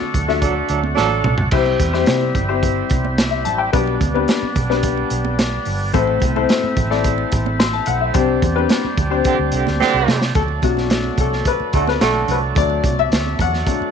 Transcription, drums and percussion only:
0.01 high conga soft
0.14 kick medium
0.14 closed hi-hat medium
0.14 low conga medium
0.29 snare soft
0.42 kick medium
0.42 closed hi-hat medium
0.42 muted conga soft
0.68 closed hi-hat medium
0.84 high conga medium
0.97 snare medium
0.97 muted conga soft
1.24 mid tom medium
1.24 low conga medium
1.38 floor tom medium
1.51 kick loud
1.51 crash medium
1.51 muted conga soft
1.51 low conga medium
1.66 muted conga soft
1.80 kick medium
1.80 closed hi-hat medium
1.80 high conga medium
1.93 snare soft
1.93 high conga medium
2.06 snare loud
2.06 closed hi-hat medium
2.23 high conga soft
2.35 kick medium
2.35 closed hi-hat medium
2.35 low conga medium
2.63 kick medium
2.63 closed hi-hat medium
2.63 muted conga soft
2.89 kick medium
2.89 closed hi-hat medium
3.05 high conga medium
3.18 snare loud
3.18 closed hi-hat medium
3.32 muted conga soft
3.45 closed hi-hat medium
3.45 low conga medium
3.73 kick loud
3.73 closed hi-hat medium
3.73 low conga medium
3.87 muted conga soft
4.01 kick medium
4.01 closed hi-hat medium
4.01 high conga medium
4.16 high conga medium
4.28 snare loud
4.28 closed hi-hat medium
4.28 muted conga soft
4.42 high conga soft
4.55 kick medium
4.55 closed hi-hat medium
4.55 low conga medium
4.70 snare soft
4.83 kick medium
4.83 closed hi-hat medium
4.83 muted conga soft
4.97 muted conga soft
5.10 closed hi-hat medium
5.25 high conga medium
5.39 snare loud
5.39 closed hi-hat medium
5.52 muted conga soft
5.65 open hi-hat medium
5.65 low conga medium
5.93 kick loud
5.93 closed hi-hat medium
5.93 muted conga soft
5.93 low conga medium
6.07 muted conga soft
6.20 kick medium
6.20 closed hi-hat medium
6.20 high conga medium
6.36 high conga medium
6.49 snare loud
6.49 closed hi-hat medium
6.49 muted conga soft
6.64 high conga soft
6.77 kick medium
6.77 closed hi-hat medium
6.77 low conga medium
6.91 snare soft
7.04 kick medium
7.04 closed hi-hat medium
7.18 muted conga soft
7.32 kick medium
7.32 closed hi-hat medium
7.46 high conga medium
7.60 snare loud
7.60 closed hi-hat medium
7.73 muted conga soft
7.86 closed hi-hat medium
7.86 low conga medium
8.14 kick loud
8.14 closed hi-hat medium
8.14 muted conga soft
8.14 low conga medium
8.42 kick medium
8.42 closed hi-hat medium
8.42 high conga medium
8.58 high conga medium
8.69 snare loud
8.69 closed hi-hat medium
8.86 high conga soft
8.98 kick medium
8.98 closed hi-hat medium
8.98 low conga medium
9.24 kick medium
9.24 closed hi-hat medium
9.52 closed hi-hat medium
9.67 snare soft
9.67 high conga medium
9.80 snare medium
9.80 muted conga soft
9.94 muted conga soft
10.08 snare loud
10.08 low conga medium
10.22 snare medium
10.35 kick loud
10.35 closed hi-hat medium
10.35 low conga medium
10.48 muted conga soft
10.62 kick medium
10.62 closed hi-hat medium
10.62 high conga medium
10.77 snare soft
10.77 high conga medium
10.90 snare loud
10.90 closed hi-hat medium
11.04 muted conga soft
11.04 high conga soft
11.17 kick medium
11.17 closed hi-hat medium
11.17 low conga medium
11.33 snare soft
11.45 kick medium
11.45 closed hi-hat medium
11.60 muted conga soft
11.73 kick medium
11.73 closed hi-hat medium
11.87 snare soft
11.87 high conga medium
12.01 snare loud
12.01 closed hi-hat medium
12.01 muted conga soft
12.28 closed hi-hat medium
12.28 low conga medium
12.55 kick loud
12.55 closed hi-hat medium
12.55 muted conga soft
12.55 low conga medium
12.70 muted conga soft
12.83 kick medium
12.83 closed hi-hat medium
12.83 high conga medium
12.99 high conga medium
13.12 snare loud
13.12 closed hi-hat medium
13.26 muted conga soft
13.26 high conga soft
13.39 kick medium
13.39 closed hi-hat medium
13.39 low conga medium
13.54 snare soft
13.67 kick medium
13.67 closed hi-hat medium
13.67 muted conga soft
13.82 muted conga soft

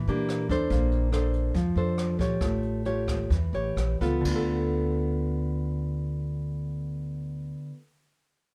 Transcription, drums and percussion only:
0.08 closed hi-hat soft
0.29 cross-stick soft
0.29 closed hi-hat soft
0.49 kick soft
0.49 closed hi-hat soft
0.70 kick medium
0.70 closed hi-hat soft
0.92 closed hi-hat soft
1.13 cross-stick soft
1.13 closed hi-hat soft
1.34 closed hi-hat soft
1.55 kick soft
1.55 closed hi-hat soft
1.76 closed hi-hat soft
1.98 cross-stick medium
1.98 closed hi-hat soft
2.19 kick medium
2.19 closed hi-hat soft
2.41 kick medium
2.41 cross-stick medium
2.41 closed hi-hat soft
2.63 closed hi-hat soft
2.85 closed hi-hat soft
3.08 kick soft
3.08 cross-stick medium
3.08 closed hi-hat soft
3.31 kick medium
3.31 closed hi-hat soft
3.54 closed hi-hat soft
3.77 cross-stick soft
3.77 closed hi-hat soft
4.01 kick soft
4.01 closed hi-hat soft
4.25 kick medium
4.25 crash medium

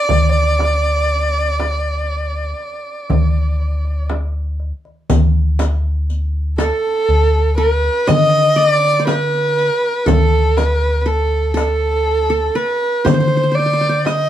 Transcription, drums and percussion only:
0.09 frame drum medium
0.09 darbuka dum medium
0.35 darbuka ka soft
0.59 darbuka tek medium
0.59 frame drum medium
1.10 darbuka ka soft
1.60 darbuka tek medium
1.60 frame drum medium
2.60 darbuka ka soft
3.10 darbuka dum medium
3.10 frame drum medium
3.60 darbuka ka soft
3.85 darbuka ka soft
4.10 darbuka tek medium
4.10 frame drum medium
4.60 darbuka ka soft
4.85 darbuka ka soft
5.10 riq medium
5.10 darbuka dum medium
5.10 frame drum medium
5.59 riq medium
5.59 darbuka tek medium
5.59 frame drum medium
6.10 riq soft
6.10 darbuka ka soft
6.59 riq medium
6.59 darbuka tek medium
6.59 frame drum medium
8.08 riq medium
8.08 darbuka dum medium
8.08 frame drum medium
8.84 riq soft
9.08 riq medium
9.08 darbuka tek medium
9.08 frame drum medium
9.34 riq soft
9.58 riq soft
9.58 darbuka ka soft
10.07 riq medium
10.07 darbuka dum medium
10.07 frame drum medium
10.57 riq soft
10.57 darbuka tek medium
10.57 frame drum medium
11.07 darbuka ka soft
11.57 riq soft
11.57 darbuka tek medium
11.57 frame drum medium
13.06 riq medium
13.06 frame drum medium
13.06 darbuka dum medium
13.82 riq soft
14.06 riq soft
14.06 darbuka tek medium
14.06 frame drum medium

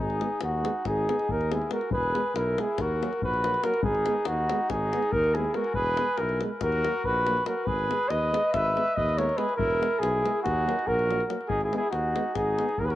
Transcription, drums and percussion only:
0.10 davul high soft
0.21 davul high medium
0.41 davul high medium
0.65 davul high medium
0.85 davul high medium
0.85 davul low medium
1.09 davul high medium
1.19 davul high soft
1.29 davul low medium
1.41 davul high soft
1.52 davul high medium
1.62 davul high soft
1.71 davul high medium
1.81 davul high soft
1.91 davul low medium
2.03 davul high soft
2.15 davul high medium
2.36 davul high medium
2.58 davul high medium
2.78 davul high medium
2.78 davul low medium
3.03 davul high medium
3.13 davul high soft
3.22 davul low medium
3.34 davul high soft
3.44 davul high medium
3.54 davul high soft
3.64 davul high medium
3.74 davul high soft
3.83 davul low loud
3.95 davul high soft
4.06 davul high medium
4.25 davul high medium
4.49 davul high medium
4.70 davul high medium
4.70 davul low medium
4.93 davul high medium
5.02 davul high soft
5.12 davul low medium
5.24 davul high soft
5.35 davul high medium
5.44 davul high soft
5.54 davul high medium
5.64 davul high soft
5.74 davul low medium
5.86 davul high soft
5.97 davul high medium
6.17 davul high medium
6.29 davul high soft
6.41 davul high medium
6.61 davul high medium
6.61 davul low medium
6.72 davul high soft
6.84 davul high medium
7.04 davul low medium
7.27 davul high medium
7.37 davul high soft
7.46 davul high medium
7.67 davul low medium
7.79 davul high soft
7.91 davul high medium
8.11 davul high medium
8.34 davul high medium
8.54 davul high medium
8.54 davul low medium
8.77 davul high medium
8.88 davul high soft
8.97 davul low medium
9.09 davul high soft
9.19 davul high medium
9.29 davul high soft
9.38 davul high medium
9.49 davul high soft
9.59 davul low medium
9.71 davul high soft
9.82 davul high medium
10.03 davul high medium
10.25 davul high medium
10.46 davul high medium
10.46 davul low medium
10.69 davul high medium
10.79 davul high soft
10.88 davul low medium
10.99 davul high soft
11.11 davul high soft
11.20 davul high soft
11.30 davul high medium
11.41 davul high soft
11.50 davul low medium
11.61 davul high soft
11.73 davul high soft
11.93 davul high medium
12.16 davul high medium
12.35 davul high medium
12.35 davul low medium
12.59 davul high medium
12.69 davul high soft
12.78 davul low medium
12.90 davul high soft

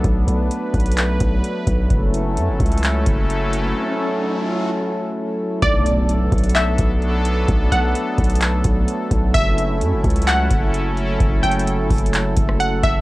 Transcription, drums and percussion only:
0.04 kick loud
0.04 closed hi-hat medium
0.28 closed hi-hat medium
0.51 closed hi-hat medium
0.74 kick loud
0.74 closed hi-hat soft
0.80 closed hi-hat medium
0.86 closed hi-hat medium
0.92 closed hi-hat medium
0.97 clap loud
0.97 closed hi-hat medium
1.20 kick loud
1.20 closed hi-hat medium
1.44 closed hi-hat medium
1.67 kick loud
1.67 closed hi-hat medium
1.90 kick loud
1.90 closed hi-hat medium
2.14 closed hi-hat medium
2.37 closed hi-hat medium
2.60 kick loud
2.60 closed hi-hat soft
2.66 closed hi-hat medium
2.72 closed hi-hat medium
2.78 closed hi-hat medium
2.83 clap loud
2.83 closed hi-hat medium
3.06 kick loud
3.06 closed hi-hat medium
3.30 closed hi-hat medium
3.53 closed hi-hat medium
5.62 kick loud
5.62 closed hi-hat medium
5.86 closed hi-hat medium
6.09 closed hi-hat medium
6.32 kick loud
6.32 closed hi-hat soft
6.38 closed hi-hat medium
6.44 closed hi-hat medium
6.49 closed hi-hat medium
6.55 clap loud
6.55 closed hi-hat medium
6.78 kick loud
6.78 closed hi-hat medium
7.02 closed hi-hat medium
7.25 closed hi-hat medium
7.48 kick loud
7.48 closed hi-hat medium
7.72 closed hi-hat medium
7.95 closed hi-hat medium
8.18 kick loud
8.18 closed hi-hat soft
8.24 closed hi-hat medium
8.30 closed hi-hat medium
8.35 closed hi-hat medium
8.41 clap loud
8.41 closed hi-hat medium
8.64 kick loud
8.64 closed hi-hat medium
8.88 closed hi-hat medium
9.11 kick loud
9.11 closed hi-hat medium
9.34 kick loud
9.34 closed hi-hat medium
9.58 closed hi-hat medium
9.81 closed hi-hat medium
10.04 kick loud
10.04 closed hi-hat soft
10.10 closed hi-hat medium
10.16 closed hi-hat medium
10.22 closed hi-hat medium
10.28 clap loud
10.28 closed hi-hat medium
10.51 kick loud
10.51 closed hi-hat medium
10.74 closed hi-hat medium
10.97 closed hi-hat medium
11.20 kick loud
11.20 closed hi-hat medium
11.44 closed hi-hat medium
11.52 closed hi-hat medium
11.60 closed hi-hat medium
11.67 closed hi-hat medium
11.90 kick loud
11.90 closed hi-hat soft
11.90 open hi-hat medium
11.98 closed hi-hat medium
12.06 closed hi-hat medium
12.14 clap loud
12.14 closed hi-hat medium
12.37 kick loud
12.37 closed hi-hat medium
12.49 cross-stick medium
12.60 closed hi-hat medium
12.83 kick loud
12.83 closed hi-hat medium

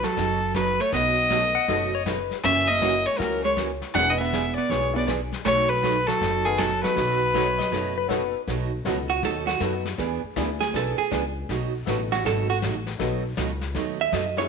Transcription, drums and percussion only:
0.03 snare soft
0.17 brush sweep medium
0.17 kick soft
0.17 snare soft
0.54 kick soft
0.54 snare medium
0.54 hi-hat pedal medium
0.92 brush sweep soft
0.92 kick soft
0.92 snare soft
1.30 kick soft
1.30 snare medium
1.30 hi-hat pedal medium
1.68 brush sweep soft
1.68 kick soft
1.68 snare soft
2.06 kick soft
2.06 snare medium
2.06 hi-hat pedal medium
2.31 snare soft
2.44 brush sweep medium
2.44 kick soft
2.44 snare medium
2.82 kick soft
2.82 snare medium
2.82 hi-hat pedal medium
3.19 brush sweep medium
3.19 kick soft
3.19 snare soft
3.57 kick soft
3.57 snare medium
3.57 hi-hat pedal soft
3.82 snare soft
3.95 brush sweep soft
3.95 kick soft
3.95 snare soft
4.32 kick soft
4.32 snare medium
4.32 hi-hat pedal medium
4.70 brush sweep soft
4.70 kick soft
4.70 snare soft
5.08 kick soft
5.08 snare medium
5.08 hi-hat pedal medium
5.32 snare soft
5.45 brush sweep soft
5.45 kick soft
5.45 snare soft
5.83 kick soft
5.83 snare medium
5.83 hi-hat pedal medium
6.08 snare soft
6.21 brush sweep medium
6.21 kick soft
6.21 snare soft
6.59 kick soft
6.59 snare medium
6.59 hi-hat pedal medium
6.84 snare soft
6.97 brush sweep medium
6.97 kick soft
6.97 snare medium
7.34 kick soft
7.34 snare medium
7.34 hi-hat pedal medium
7.60 snare soft
7.72 brush sweep soft
7.72 kick soft
7.72 snare soft
8.10 kick soft
8.10 snare medium
8.10 hi-hat pedal medium
8.48 brush sweep medium
8.48 kick soft
8.48 snare soft
8.85 kick soft
8.85 snare medium
8.85 hi-hat pedal medium
9.23 brush sweep medium
9.23 kick soft
9.23 snare soft
9.48 snare medium
9.60 kick soft
9.60 snare medium
9.60 hi-hat pedal medium
9.85 snare soft
9.98 brush sweep soft
9.98 kick soft
9.98 snare soft
10.36 kick soft
10.36 snare medium
10.36 hi-hat pedal medium
10.61 snare soft
10.74 brush sweep soft
10.74 kick soft
10.74 snare soft
11.12 kick soft
11.12 snare medium
11.12 hi-hat pedal medium
11.49 brush sweep medium
11.49 kick soft
11.49 snare medium
11.87 kick soft
11.87 snare medium
11.87 hi-hat pedal medium
12.12 snare soft
12.25 brush sweep medium
12.25 kick soft
12.25 snare medium
12.62 kick soft
12.62 snare medium
12.62 hi-hat pedal medium
12.87 snare soft
12.99 brush sweep medium
12.99 kick soft
12.99 snare soft
13.37 kick soft
13.37 snare medium
13.37 hi-hat pedal medium
13.61 snare soft
13.75 brush sweep soft
13.75 kick soft
13.75 snare soft
14.12 kick soft
14.12 snare medium
14.12 hi-hat pedal medium
14.37 snare soft

